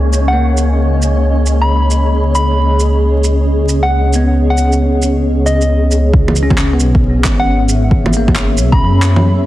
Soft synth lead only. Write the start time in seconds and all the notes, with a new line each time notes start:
0.28 F#5
1.61 B5
2.35 B5
3.83 F#5
4.50 F#5
5.46 D#5
7.40 F#5
8.72 B5